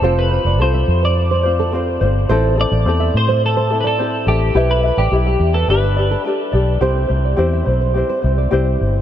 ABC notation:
X:1
M:4/4
L:1/16
Q:1/4=106
K:C
V:1 name="Nylon-string guitar"
c2 z d z e z c z c z A z4 | c2 z d z e z c z c z d2 z3 | B2 z d z e z B z B z A z4 | c2 z d z e z c z c z d2 z3 |]
V:2 name="Clean electric guitar"
A B3 c3 d6 z3 | z2 d4 c2 A2- A/2 B/2 A3 G2- | G B2 G4 A B4 z4 | z16 |]
V:3 name="Ukulele"
[CFAc]2 [CFc]2 [CFAc]6 [CFc]2 [CFAc]2 [CFc]2 | [CEAc]2 [CEA]2 [CEAc]6 [CEA]2 [CEAc]2 [CEA]2 | [EGBe]2 [EBe]2 [EGBe]4 [DGBd]2 [DGd]2 [DGBd]2 [DGd]2 | [CEGc]2 [CEc]2 [CEGc]2 [CEc]2 [CEGc]2 [CEc]2 [CEGc]4 |]
V:4 name="Fingered electric bass" clef=bass
F,,,3 F,,, C,,2 F,,8 G,,,2 | A,,,3 A,,, E,,2 A,,8 A,,,2 | B,,,3 A,,, B,,,2 E,,2 G,,,4 z2 B,,,2 | C,,2 C,,2 E,,2 B,,,3 z C,,2 C,,2 G,,,2 |]